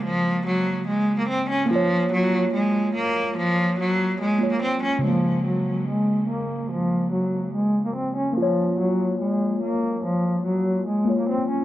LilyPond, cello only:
\new Staff \with { instrumentName = "Cello" } { \clef bass \time 4/4 \key ges \lydian \tempo 4 = 144 f4 ges4 aes8. bes16 c'8 des'8 | f4 ges4 aes4 bes4 | f4 ges4 aes8. bes16 c'8 des'8 | f4 ges4 aes4 bes4 |
f4 ges4 aes8. bes16 c'8 des'8 | f4 ges4 aes4 bes4 | f4 ges4 aes8. bes16 c'8 des'8 | }